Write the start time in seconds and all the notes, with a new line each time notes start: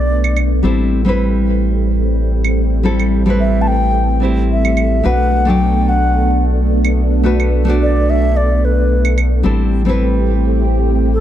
Already playing: B1 A3 B3 D4 F#4 D5
0.24 claves
0.37 claves
0.63 A1 G3 A3 C4 E4 A4
1.05 G3 C4 E4
1.09 B4
2.44 claves
2.83 G3 C4 E4 A4
3.00 claves
3.26 G3 C4 E4
3.30 B4
3.40 E5
3.62 A5
3.68 G5
4.20 G3 C4 E4
4.25 G4
4.52 E5
4.65 claves
4.77 claves
5.03 B1 A3 B3 D4 F#4 B4 F#5
5.45 F#3 A3 D4 G5
5.50 D5
5.89 F#5
6.85 claves
7.24 A3 D4 F#4 B4
7.40 claves
7.65 A3 D4 F#4
7.70 D5
7.83 D5
8.10 E5
8.37 D5
8.65 B4
9.05 claves
9.18 claves
9.43 A1 G3 A3 C4 E4 G4 A4
9.85 G3 C4 E4
9.89 B4
11.13 A4